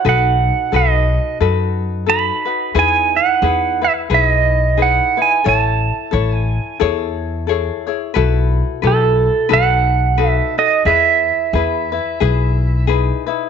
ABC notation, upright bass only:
X:1
M:4/4
L:1/8
Q:"Swing" 1/4=89
K:E
V:1 name="Upright bass" clef=bass
B,,,2 B,,,2 F,,4 | E,,2 E,,2 B,,,4 | A,,,2 A,,,2 E,,4 | B,,,2 B,,,2 B,,,4 |
E,,2 E,,2 B,,,4 |]